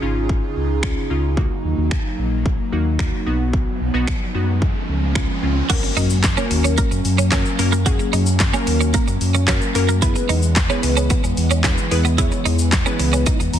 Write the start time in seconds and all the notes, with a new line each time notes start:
Already playing: C#3 C#4 D#4 F4 G#4
0.02 G#1 C#4 D#4 F4
0.29 kick
0.56 C#2
0.83 C#4 D#4 F4, finger snap, kick
1.10 C#2 C#4 D#4 F4
1.37 F#3 A#3 D#4 F#4, kick, riser
1.64 D#2
1.78 D#2
1.91 finger snap, kick
2.18 A#1
2.46 kick
2.72 D#2 A#3 D#4 F#4
2.99 A#3 D#4 F#4, finger snap, kick
3.26 B1 F#3 B3 D#4 F#4
3.53 kick
3.81 B1
3.94 B1 B3 D#4 F#4
4.07 finger snap, kick
4.34 F#2 B3 D#4 F#4
4.62 F3 G#3 C#4, kick
4.89 C#2
5.15 G#3 C#4 F4, finger snap, kick
5.42 C#2 G#3 C#4 F4
5.70 F#3 A#3 C#4 F#4 A#4, kick, closed hi-hat, crash, impact, shaker
5.83 muted clean electric guitar stroke, shaker
5.97 F#2 D#4, open hi-hat, shaker
6.10 shaker
6.24 kick, snare, clap, closed hi-hat, shaker
6.37 A#3 C#4 F#4 A#4, shaker
6.51 D#2, muted clean electric guitar stroke, open hi-hat, shaker
6.64 C#4, shaker
6.78 A#3, kick, closed hi-hat, shaker
6.91 F#2, muted clean electric guitar stroke, shaker
7.05 F#2, open hi-hat, shaker
7.18 C#4, shaker
7.32 A#3 C#4 F#4 A#4, kick, snare, clap, closed hi-hat, shaker
7.45 shaker
7.59 F#2 A#3 C#4 F#4 A#4, muted clean electric guitar stroke, open hi-hat, shaker
7.72 A#3, shaker
7.86 A#3 C#4 F#4 G#4, kick, closed hi-hat, shaker
7.99 muted clean electric guitar stroke, shaker
8.13 F#2 D#4, open hi-hat, shaker
8.26 shaker
8.40 kick, snare, clap, closed hi-hat, shaker
8.53 A#3 C#4 F#4 A#4, shaker
8.67 D#2, muted clean electric guitar stroke, open hi-hat, shaker
8.81 C#4, shaker
8.94 A#3, kick, closed hi-hat, shaker
9.08 F#2, muted clean electric guitar stroke, shaker
9.21 F#2, open hi-hat, shaker
9.34 C#4, shaker
9.48 A#3 C#4 F#4 A#4, kick, snare, clap, closed hi-hat, shaker
9.61 shaker
9.75 F#2 A#3 C#4 F#4 A#4, muted clean electric guitar stroke, open hi-hat, shaker
9.89 A#3, shaker
10.02 E3 G#3 B3 E4 G#4 B4, kick, closed hi-hat, shaker
10.15 muted clean electric guitar stroke, shaker
10.29 E2 D#4, open hi-hat, shaker
10.42 shaker
10.56 kick, snare, clap, closed hi-hat, shaker
10.69 B3 C#4 E4 G#4 B4, shaker
10.83 C#2, muted clean electric guitar stroke, open hi-hat, shaker
10.97 C#4, shaker
11.10 B3, kick, closed hi-hat, shaker
11.24 E2, muted clean electric guitar stroke, shaker
11.37 E2, open hi-hat, shaker
11.51 C#4, shaker
11.64 B3 C#4 E4 G#4 B4, kick, snare, clap, closed hi-hat, shaker
11.78 shaker
11.91 E2 B3 E4 G#4 B4, muted clean electric guitar stroke, open hi-hat, shaker
12.05 B3, shaker
12.18 B3 E4 G#4 C#5, kick, closed hi-hat, shaker
12.32 muted clean electric guitar stroke, shaker
12.45 E2 D#4, open hi-hat, shaker
12.59 shaker
12.72 kick, snare, clap, closed hi-hat, shaker
12.86 B3 C#4 E4 G#4 B4, shaker
12.99 C#2, muted clean electric guitar stroke, open hi-hat, shaker
13.13 C#4, shaker
13.26 D#4, kick, closed hi-hat, shaker
13.40 E2, muted clean electric guitar stroke, shaker
13.54 E2 A#5, open hi-hat, shaker